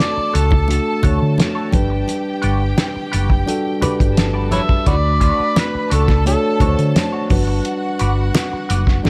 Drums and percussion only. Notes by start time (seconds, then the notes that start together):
0.00 snare, closed hi-hat
0.35 closed hi-hat
0.51 kick, low conga
0.68 closed hi-hat, muted conga
1.03 kick, closed hi-hat, muted conga, low conga
1.38 snare, closed hi-hat, high conga
1.72 kick, closed hi-hat, high conga
2.08 closed hi-hat, muted conga
2.43 closed hi-hat
2.78 snare, closed hi-hat, high conga
3.13 closed hi-hat
3.30 kick
3.47 closed hi-hat, muted conga
3.82 closed hi-hat, muted conga, low conga
4.00 kick, closed hi-hat
4.17 snare, closed hi-hat, high conga
4.51 closed hi-hat, high conga
4.69 kick
4.86 kick, closed hi-hat, muted conga
5.21 kick, closed hi-hat
5.56 snare, closed hi-hat, high conga
5.91 closed hi-hat
6.08 kick, snare, low conga
6.26 closed hi-hat, muted conga
6.60 kick, closed hi-hat, muted conga, low conga
6.79 closed hi-hat
6.96 snare, closed hi-hat, high conga
7.30 kick, open hi-hat, high conga
7.65 closed hi-hat
7.99 closed hi-hat
8.35 snare, closed hi-hat, high conga
8.70 closed hi-hat
8.87 kick, snare
9.05 snare, muted conga